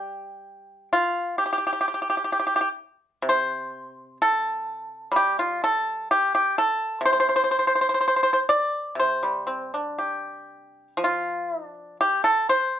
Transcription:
0.00 2.30 G3 soft
0.00 0.88 G4 medium
0.93 1.35 F4 medium
1.38 1.45 G4 medium
1.46 1.51 G4 soft
1.53 1.57 G4 soft
1.58 1.66 G4 soft
1.67 1.72 G4 soft
1.73 1.80 G4 soft
1.81 1.87 G4 soft
1.88 1.93 G4 soft
1.94 2.01 G4 soft
2.02 2.09 G4 soft
2.10 2.16 G4 soft
2.24 2.31 G4 soft
2.32 2.38 G4 soft
2.40 2.46 G4 soft
2.47 2.54 G4 soft
2.56 2.60 G4 soft
2.61 2.68 G4 soft
3.22 6.08 C3 soft
3.29 4.17 C5 medium
4.22 5.11 A4 medium
5.12 7.99 G3 soft
5.16 5.37 G4 medium
5.39 5.61 F4 medium
5.64 6.08 A4 medium
6.11 6.33 G4 medium
6.35 6.56 G4 medium
6.58 7.02 A4 medium
7.01 8.94 C3 soft
7.05 7.11 C5 medium
7.13 7.19 C5 soft
7.20 7.26 C5 medium
7.29 7.35 C5 soft
7.36 7.42 C5 medium
7.44 7.49 C5 soft
7.51 7.57 C5 medium
7.59 7.64 C5 soft
7.67 7.72 C5 soft
7.75 7.80 C5 soft
7.81 7.87 C5 soft
7.89 7.93 C5 soft
7.94 7.99 C5 soft
8.01 8.07 C5 soft
8.08 8.15 C5 medium
8.16 8.22 C5 soft
8.23 8.30 C5 medium
8.33 8.39 C5 soft
8.49 8.95 D5 medium
8.95 11.97 C3 soft
8.99 9.98 C5 medium
9.23 10.97 G3 soft
9.47 9.73 C4 soft
9.74 11.66 D4 soft
9.98 11.04 G4 soft
10.97 12.80 F3 soft
11.04 11.66 F4 medium
11.66 11.96 D4 medium
12.01 12.23 G4 medium
12.24 12.47 A4 medium
12.49 12.80 C5 medium

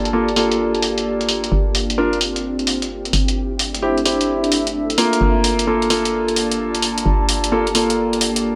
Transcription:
0.00 1.50 G1 medium
0.00 0.11 A#3 medium
0.00 3.09 A#3 medium
0.00 1.48 D4 medium
0.00 0.11 F4 medium
0.00 1.48 F4 medium
0.00 3.99 G4 medium
0.00 0.11 A4 medium
0.00 1.48 A4 medium
0.00 3.99 D5 medium
0.00 2.18 A5 medium
0.05 closed hi-hat medium
0.13 0.27 A#3 medium
0.13 0.27 F4 medium
0.13 0.27 A4 medium
0.28 closed hi-hat soft
0.36 1.51 A#3 medium
0.36 1.51 F4 medium
0.36 1.51 A4 medium
0.36 open hi-hat loud
0.52 closed hi-hat medium
0.75 closed hi-hat soft
0.82 open hi-hat medium
0.98 closed hi-hat medium
1.21 closed hi-hat soft
1.29 open hi-hat medium
1.44 closed hi-hat medium
1.52 3.12 G1 medium
1.52 3.99 C4 medium
1.52 3.12 D4 medium
1.52 3.12 F4 medium
1.52 5.17 G4 medium
1.75 open hi-hat medium
1.90 closed hi-hat medium
1.98 2.17 D4 medium
1.98 2.17 F4 medium
1.98 2.17 A#4 medium
2.13 closed hi-hat soft
2.21 open hi-hat medium
2.36 closed hi-hat medium
2.59 closed hi-hat soft
2.67 open hi-hat medium
2.82 closed hi-hat medium
3.05 closed hi-hat soft
3.13 4.96 G1 medium
3.13 5.19 A3 medium
3.13 5.19 C4 medium
3.13 5.83 D4 medium
3.13 5.19 E4 medium
3.13 open hi-hat medium
3.28 closed hi-hat medium
3.46 6.37 E5 medium
3.59 open hi-hat medium
3.66 6.72 A4 medium
3.75 closed hi-hat medium
3.82 3.96 C4 medium
3.82 3.96 E4 medium
3.82 3.96 G4 medium
3.98 closed hi-hat soft
4.05 4.64 C4 medium
4.05 4.64 E4 medium
4.05 4.64 G4 medium
4.05 open hi-hat medium
4.21 closed hi-hat medium
4.44 closed hi-hat soft
4.52 open hi-hat medium
4.67 closed hi-hat medium
4.90 closed hi-hat soft
4.98 5.65 A#3 medium
4.98 5.65 F4 medium
4.98 5.65 A#4 medium
4.98 open hi-hat medium
5.13 closed hi-hat medium
5.21 7.04 G1 medium
5.21 8.55 A#3 medium
5.21 8.55 D4 medium
5.21 8.55 F4 medium
5.21 8.55 G4 medium
5.21 8.55 A5 medium
5.31 8.55 D5 medium
5.44 open hi-hat medium
5.59 closed hi-hat medium
5.67 5.86 A#3 medium
5.67 5.86 F4 medium
5.67 5.86 A4 medium
5.73 8.55 A5 medium
5.82 closed hi-hat soft
5.90 7.50 A#3 medium
5.90 7.50 F4 medium
5.90 7.50 A4 medium
5.90 open hi-hat medium
6.05 closed hi-hat medium
6.28 closed hi-hat soft
6.36 open hi-hat medium
6.51 closed hi-hat medium
6.75 closed hi-hat soft
6.82 open hi-hat medium
6.98 closed hi-hat medium
7.06 8.55 G1 medium
7.29 open hi-hat medium
7.44 closed hi-hat medium
7.52 7.66 A#3 medium
7.52 7.66 F4 medium
7.52 7.66 A4 medium
7.67 closed hi-hat soft
7.75 8.55 A#3 medium
7.75 8.55 F4 medium
7.75 8.55 A4 medium
7.75 open hi-hat medium
7.90 closed hi-hat medium
8.13 closed hi-hat soft
8.21 open hi-hat medium
8.36 closed hi-hat medium

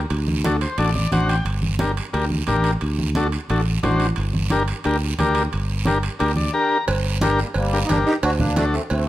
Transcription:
0.10 0.65 D2 loud
0.10 high conga soft
0.10 high timbale medium
0.10 long guiro medium
0.28 high conga medium
0.44 0.57 D4 medium
0.44 0.57 F#4 medium
0.44 0.57 A4 medium
0.44 high conga medium
0.44 high timbale medium
0.44 short guiro medium
0.61 0.77 C5 medium
0.61 high timbale medium
0.61 short guiro medium
0.78 1.05 A1 medium
0.78 0.90 D4 medium
0.78 0.91 F#4 medium
0.78 0.91 A4 medium
0.78 0.94 D5 medium
0.78 high conga soft
0.78 high timbale medium
0.78 long guiro medium
0.95 1.11 D5 medium
0.95 high conga medium
1.12 1.39 A1 medium
1.12 1.36 D4 medium
1.12 1.36 F#4 medium
1.12 1.36 C5 medium
1.12 1.28 F#5 medium
1.12 high conga medium
1.12 high timbale medium
1.12 short guiro medium
1.29 1.45 G5 medium
1.29 high timbale medium
1.29 short guiro medium
1.45 2.00 G1 medium
1.45 high conga soft
1.45 high timbale medium
1.45 long guiro medium
1.62 high conga medium
1.79 1.92 D4 medium
1.79 1.92 G4 medium
1.79 1.92 A#4 medium
1.79 high conga loud
1.79 high timbale medium
1.79 short guiro medium
1.97 high timbale medium
1.97 short guiro medium
2.13 2.41 D2 medium
2.13 2.25 D4 medium
2.13 2.25 G4 medium
2.13 2.25 A#4 medium
2.13 high conga soft
2.13 high timbale medium
2.13 long guiro medium
2.30 high conga medium
2.47 2.75 A1 medium
2.47 2.71 D4 medium
2.47 2.71 G4 medium
2.47 2.71 A#4 medium
2.47 high conga medium
2.47 high timbale medium
2.47 short guiro medium
2.64 high timbale medium
2.64 short guiro medium
2.81 3.36 D2 medium
2.81 high conga soft
2.81 high timbale medium
2.81 long guiro medium
2.99 high conga medium
3.15 3.28 D4 medium
3.15 3.28 F#4 medium
3.15 3.28 A4 medium
3.15 high conga medium
3.15 high timbale medium
3.15 short guiro medium
3.32 high timbale medium
3.32 short guiro medium
3.49 3.77 A1 medium
3.49 3.61 D4 medium
3.49 3.62 F#4 medium
3.49 3.62 A4 medium
3.49 high conga soft
3.49 high timbale medium
3.49 long guiro medium
3.83 4.11 A1 medium
3.83 4.07 D4 medium
3.83 4.07 F#4 medium
3.83 4.07 C5 loud
3.83 high conga medium
3.83 high timbale medium
3.83 low timbale medium
3.83 short guiro medium
4.00 high timbale medium
4.00 short guiro medium
4.16 4.72 G1 loud
4.16 high conga soft
4.16 high timbale medium
4.16 long guiro medium
4.34 high conga medium
4.50 4.63 D4 medium
4.50 4.63 G4 medium
4.50 4.63 A#4 loud
4.50 high conga medium
4.50 high timbale medium
4.50 short guiro medium
4.68 high timbale medium
4.68 short guiro medium
4.84 5.12 D2 medium
4.84 4.97 D4 medium
4.84 4.97 G4 medium
4.84 4.97 A#4 medium
4.84 high conga soft
4.84 high timbale medium
4.84 long guiro medium
5.19 5.46 D2 medium
5.19 5.43 D4 medium
5.19 5.43 G4 medium
5.19 5.43 A#4 loud
5.19 high conga medium
5.19 high timbale medium
5.19 short guiro medium
5.35 high timbale medium
5.35 short guiro medium
5.52 6.07 G1 medium
5.52 high conga soft
5.52 high timbale medium
5.52 long guiro medium
5.85 5.98 D4 medium
5.85 5.99 G4 medium
5.85 5.99 A#4 medium
5.85 high conga medium
5.85 high timbale medium
5.85 short guiro medium
6.03 high timbale medium
6.03 short guiro medium
6.19 6.48 D2 medium
6.19 6.32 D4 medium
6.19 6.32 G4 medium
6.19 6.32 A#4 medium
6.19 high conga soft
6.19 high timbale medium
6.19 long guiro medium
6.36 6.53 D5 medium
6.36 high conga medium
6.53 6.77 D4 medium
6.53 6.78 G4 medium
6.53 6.78 A#4 medium
6.53 6.85 A#5 medium
6.87 7.42 G1 loud
6.87 cowbell loud
6.87 high conga soft
6.87 long guiro medium
7.21 7.40 D4 medium
7.21 7.40 G4 medium
7.21 7.40 A#4 medium
7.21 cowbell medium
7.21 high conga loud
7.21 short guiro medium
7.39 7.48 G3 medium
7.39 7.48 A#3 medium
7.39 short guiro medium
7.54 7.83 G1 loud
7.54 7.84 G3 medium
7.54 7.87 A#3 medium
7.54 cowbell medium
7.54 high conga soft
7.54 long guiro medium
7.73 7.79 D4 medium
7.73 7.79 G4 medium
7.73 7.79 A#4 medium
7.85 7.89 D#4 medium
7.89 8.03 G1 medium
7.89 7.98 A#3 medium
7.89 8.13 D4 medium
7.89 7.98 D4 medium
7.89 8.14 G4 medium
7.89 8.14 A#4 medium
7.89 cowbell medium
7.89 high conga medium
7.89 short guiro medium
8.06 8.14 D#4 medium
8.06 8.15 G4 loud
8.06 short guiro medium
8.23 8.78 D2 loud
8.23 8.31 D4 medium
8.23 8.31 F#4 loud
8.23 cowbell loud
8.23 high conga soft
8.23 long guiro medium
8.39 8.55 A#3 medium
8.39 8.56 D4 medium
8.39 high conga medium
8.39 low conga medium
8.56 8.64 A3 medium
8.56 8.65 D4 loud
8.56 8.75 D4 medium
8.56 8.75 F#4 medium
8.56 8.76 A4 medium
8.56 cowbell medium
8.56 high conga loud
8.56 short guiro medium
8.73 8.81 A3 medium
8.73 8.82 C4 medium
8.73 short guiro medium
8.90 9.08 D2 loud
8.90 9.08 A3 medium
8.90 9.08 C4 medium
8.90 cowbell medium
8.90 high conga soft
8.90 long guiro medium

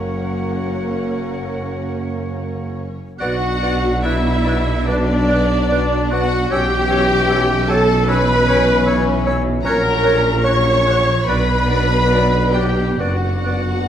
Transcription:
0.00 2.96 F#1 medium
0.00 2.96 F#1 soft
0.00 2.97 F#2 medium
0.00 2.79 F#3 soft
0.00 2.84 A#3 medium
0.00 3.00 A#3 soft
0.00 2.96 C#4 medium
0.00 2.85 F#4 medium
0.00 3.01 A#4 soft
0.00 2.84 C#5 medium
0.00 2.97 C#5 medium
0.00 2.74 F#5 medium
0.00 2.78 F#5 medium
3.19 6.46 B1 medium
3.19 6.47 B2 loud
3.19 4.83 F#3 medium
3.19 3.38 B3 medium
3.19 4.83 D4 medium
3.19 4.00 F#4 loud
3.19 4.00 F#4 medium
3.19 4.00 F#4 loud
3.19 4.01 F#4 medium
3.19 3.36 D5 medium
3.19 4.01 F#5 loud
3.19 3.29 F#6 medium
3.62 3.79 B3 medium
3.62 3.78 D5 medium
3.62 3.72 F#6 medium
4.03 4.21 B3 medium
4.03 4.87 E4 loud
4.03 4.89 E4 medium
4.03 4.87 E4 medium
4.03 4.19 D5 medium
4.03 4.86 E5 loud
4.03 4.14 F#6 medium
4.45 4.62 B3 medium
4.45 4.61 D5 medium
4.45 4.57 F#6 medium
4.86 6.47 F#3 medium
4.86 5.04 B3 medium
4.86 6.10 D4 loud
4.86 6.11 D4 medium
4.86 6.48 D4 loud
4.86 5.02 D5 medium
4.86 6.11 D5 loud
4.86 4.97 F#6 medium
5.29 5.45 B3 medium
5.29 5.45 D5 medium
5.29 5.39 F#6 medium
5.69 5.87 B3 medium
5.69 5.85 D5 medium
5.69 5.80 F#6 medium
6.10 6.29 B3 medium
6.10 6.53 F#4 loud
6.10 6.50 F#4 loud
6.10 6.51 F#4 loud
6.10 6.26 D5 medium
6.10 6.51 F#5 loud
6.10 6.20 F#6 medium
6.50 9.60 B1 medium
6.50 9.60 B1 loud
6.50 9.61 B2 loud
6.50 8.06 E3 loud
6.50 8.05 C#4 loud
6.50 6.68 C#4 medium
6.50 7.69 G4 loud
6.50 7.67 G4 loud
6.50 7.69 G4 loud
6.50 7.72 G4 loud
6.50 6.66 C#5 medium
6.50 7.68 G5 loud
6.50 6.60 E6 medium
6.90 7.07 C#4 medium
6.90 7.06 C#5 medium
6.90 6.99 E6 medium
7.29 7.48 C#4 medium
7.29 7.46 C#5 medium
7.29 7.38 E6 medium
7.69 7.87 C#4 medium
7.69 8.08 A4 loud
7.69 8.11 A4 loud
7.69 7.85 C#5 medium
7.69 8.09 A5 loud
7.69 7.78 E6 medium
8.07 9.62 E3 loud
8.07 9.62 C#4 loud
8.07 8.26 C#4 medium
8.07 9.24 B4 loud
8.07 9.26 B4 loud
8.07 8.24 C#5 medium
8.07 9.26 B5 loud
8.07 8.16 E6 medium
8.47 8.66 C#4 medium
8.47 8.64 C#5 medium
8.47 8.56 E6 medium
8.87 9.05 C#4 medium
8.87 9.03 C#5 medium
8.87 8.96 E6 medium
9.26 9.43 C#4 medium
9.26 9.42 C#5 medium
9.26 9.35 E6 medium
9.63 11.09 A#1 loud
9.63 11.23 A#1 loud
9.63 11.23 A#2 loud
9.63 10.40 F#3 loud
9.63 9.80 C#4 loud
9.63 10.40 C#4 loud
9.63 10.40 A#4 loud
9.63 10.41 A#4 loud
9.63 9.82 C#5 loud
9.63 10.39 A#5 loud
9.63 9.74 F#6 medium
10.03 10.20 C#4 medium
10.03 10.22 C#5 medium
10.03 10.12 F#6 medium
10.43 11.09 F#3 loud
10.43 10.60 C#4 medium
10.43 11.09 C#4 loud
10.43 11.29 C#5 loud
10.43 11.27 C#5 loud
10.43 10.62 C#5 medium
10.43 11.26 C#6 loud
10.43 10.53 F#6 medium
10.86 11.02 C#4 medium
10.86 11.04 C#5 medium
10.86 10.96 F#6 medium
11.26 12.99 B1 medium
11.26 12.95 B1 medium
11.26 12.95 B2 loud
11.26 12.95 F#3 loud
11.26 11.44 B3 medium
11.26 12.96 D4 loud
11.26 12.53 B4 loud
11.26 12.54 B4 loud
11.26 12.52 B4 loud
11.26 11.45 D5 medium
11.26 12.53 B5 loud
11.26 11.37 F#6 medium
11.68 11.84 B3 medium
11.68 11.86 D5 medium
11.68 11.79 F#6 medium
12.10 12.26 B3 medium
12.10 12.28 D5 medium
12.10 12.22 F#6 medium
12.53 12.69 B3 medium
12.53 12.98 G4 medium
12.53 13.01 G4 medium
12.53 12.69 D5 medium
12.53 12.98 G5 loud
12.53 12.65 F#6 medium
12.97 13.88 F#1 medium
12.97 13.82 F#2 medium
12.97 13.88 B3 medium
12.97 13.16 B3 medium
12.97 13.88 D4 medium
12.97 13.88 F#4 medium
12.97 13.16 D5 medium
12.97 13.88 F#5 loud
12.97 13.10 F#6 medium
13.45 13.62 B3 medium
13.45 13.62 D5 medium
13.45 13.55 F#6 medium

